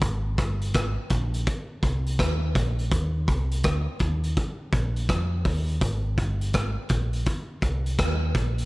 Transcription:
0.02 G#1, kick, closed hi-hat
0.38 G1, kick, cross-stick, closed hi-hat
0.61 closed hi-hat
0.74 G#1, kick, cross-stick, closed hi-hat
1.09 A#1, kick, closed hi-hat
1.34 closed hi-hat
1.46 kick, closed hi-hat
1.83 C2, kick, closed hi-hat
2.06 closed hi-hat
2.19 D#2, kick, cross-stick, closed hi-hat
2.55 A#1, kick, closed hi-hat
2.79 closed hi-hat
2.92 D#2, kick, closed hi-hat
3.28 C2, kick, closed hi-hat
3.51 closed hi-hat
3.63 D2, kick, cross-stick, closed hi-hat
3.99 D#2, kick, closed hi-hat
4.23 closed hi-hat
4.36 kick, closed hi-hat
4.73 A#1, kick, closed hi-hat
4.96 closed hi-hat
5.09 F2, kick, cross-stick, closed hi-hat
5.45 D#2, kick, open hi-hat
5.68 closed hi-hat
5.81 G#1, kick, closed hi-hat
6.18 G1, kick, closed hi-hat
6.41 closed hi-hat
6.53 G#1, kick, cross-stick, closed hi-hat
6.89 A#1, kick, closed hi-hat
7.13 closed hi-hat
7.26 kick, closed hi-hat
7.62 C2, kick, closed hi-hat
7.86 closed hi-hat
7.98 D#2, kick, cross-stick, closed hi-hat
8.34 A#1, kick, closed hi-hat
8.58 closed hi-hat

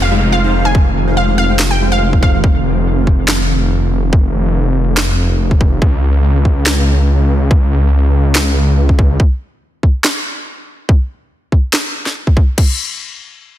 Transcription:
Already playing: F1 D#3 G#3 C4 F4, downlifter
0.02 F5
0.11 G#3 D#4 F4 C5 F5
0.32 F5
0.44 G#3 D#4 F4 C5 F5
0.65 G#5
0.75 G#3 D#4 F4 C5 F5, kick
1.07 G#3 D#4 F4 C5 F5
1.17 F5
1.38 F5
1.50 G#3 D#4 F4 C5 G5
1.59 snare, clap
1.71 G5
1.80 G#3 D#4 F4 C5 F5
1.92 F5
2.13 G#3 D#4 F4 C5 F5, kick
2.23 F5, kick
2.44 kick
3.07 kick
3.28 snare, clap
4.13 kick
4.97 snare, clap
5.51 kick
5.61 kick
5.82 C#2, kick
6.45 kick
6.66 snare, clap
7.51 kick
8.35 snare, clap
8.89 kick
8.99 kick
9.20 kick
9.83 kick
10.04 snare, clap
10.89 kick
11.52 kick
11.73 snare, clap
12.06 snare
12.27 kick
12.37 kick
12.58 kick, crash

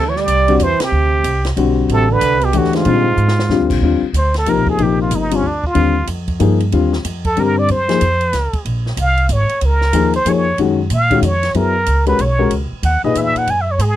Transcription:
Already playing: D2 A4
0.08 E3 C#5
0.16 G3 D5, snare
0.27 C2, hi-hat pedal, ride
0.48 D3 G3 C4 F#4, ride
0.59 E2 E3 C5, hi-hat pedal, ride
0.80 C3 G4, muted upright bass stroke, snare, ride
0.92 D2
1.23 C2, hi-hat pedal, ride
1.45 snare, ride
1.56 B1 D3 G3 C4 F#4, ride
1.88 A1 C3, ride
1.93 A4
2.11 D3 B4
2.21 C2, hi-hat pedal, ride
2.41 B2 G4, ride
2.53 D2 A2 E3 A3 D4 G4, hi-hat pedal, ride
2.57 F#4
2.64 snare
2.73 G#2 F4, snare, ride
2.85 A#2 D3 G3 C4 F4, ride
3.17 G#2, hi-hat pedal
3.28 snare
3.39 snare
3.49 F2 D3 G3 C4 F4, snare
3.61 D2
3.70 A#1, kick, crash
3.82 D#2 D3 G3 C4 F4
4.02 muted upright bass stroke
4.13 D2, hi-hat pedal, ride
4.17 C5
4.34 A4, snare, ride
4.46 C2 C3 F3 A#3 D#4 A#4, hi-hat pedal, ride
4.56 A#1
4.67 G1 G#4, kick
4.78 A#1 C3 F3 A#3 D#4, ride
4.83 G4
5.02 F4
5.10 G1, hi-hat pedal, ride
5.15 D#4
5.31 D3 G3 C4 F4, ride
5.36 C#4
5.43 D2
5.47 D4
5.64 F4, kick
5.74 D#2 D3 G3 C4 F4, ride
6.07 F2, hi-hat pedal, ride
6.28 kick, ride
6.40 G2 F3 A#3 D#4 G#4, hi-hat pedal, ride
6.60 ride
6.72 D#2 D3 G3 C4 F4, ride
6.93 snare
7.05 F2, hi-hat pedal, ride
7.25 A4, kick, ride
7.36 G2 D3 G3 C4 G4 A#4, ride
7.59 D5
7.68 F#2 C5, ride
7.88 F3 A#3 D#4 G#4, snare, ride
8.01 F2, hi-hat pedal, ride
8.21 ride
8.33 C#2, snare, hi-hat pedal, ride
8.53 muted upright bass stroke, kick, ride
8.65 A#1, ride
8.86 snare
8.97 C2, hi-hat pedal, ride
9.01 F5
9.17 ride
9.29 G#1 C#5, hi-hat pedal, ride
9.49 ride
9.61 C#2, ride
9.65 A#4
9.81 snare
9.93 D#2 F3 A#3 D#4 G#4, hi-hat pedal, ride
10.13 C5, ride
10.25 F2 F3 A#3 D#4 G#4, hi-hat pedal, ride
10.29 C#5
10.58 F#2 D#3 G#3 C#4 F#4, ride
10.90 A#2, hi-hat pedal, ride
10.94 F5
11.10 D#3 G#3 C#4 F#4, kick, ride
11.22 F2 C#5, hi-hat pedal, ride
11.43 snare, ride
11.54 F#2 F#3 B3 E4 G#4 A#4, ride
11.86 C#2, hi-hat pedal, ride
12.06 G#3 C#4 F#4 A#4 B4, ride
12.19 B1 C#5, hi-hat pedal, ride
12.38 G#3 C#4 F#4 A#4
12.51 C#2, ride
12.72 muted upright bass stroke
12.83 D#2 F#5, ride
13.03 A#2 D#4 G#4 B4 D#5, muted upright bass stroke
13.15 E2 E5, hi-hat pedal, ride
13.35 F#5, muted upright bass stroke, ride
13.47 F#2 G#5, ride
13.62 E5
13.72 C#5
13.78 G#2 G#4, hi-hat pedal, ride

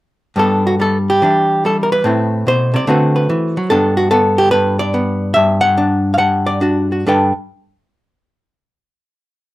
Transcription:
0.36 G2 G3 B3 D4 A4
0.67 F#4
0.80 G3 A4
1.10 G4
1.22 E3 G3 D4 E4
1.65 G3 A4
1.83 A#4
1.92 B4
2.04 A2 A3 C4 E4
2.47 B2 C5
2.74 C3 D5
2.87 D3 A3 C4 F#4 B4
3.16 B4
3.29 E3
3.57 F#3
3.70 G2 B3 D4 A4
3.97 F#4
4.11 B3 A4
4.38 G4
4.51 G2 B4
4.79 D5
4.94 B3
5.34 G2 E5
5.61 F#5
5.78 D4
6.14 F5
6.18 G2 F#5
6.46 D5
6.61 D4 F#4
6.92 F#4
7.07 G2 D4 A4 B4 G5

